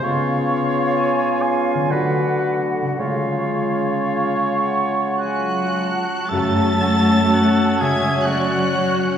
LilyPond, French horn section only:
\new Staff \with { instrumentName = "French horn section" } { \time 3/4 \key fis \minor \tempo 4 = 58 <b eis'>2 <a fis'>4 | <gis eis'>2~ <gis eis'>8 r8 | <cis' fis'>8 r2 r8 | }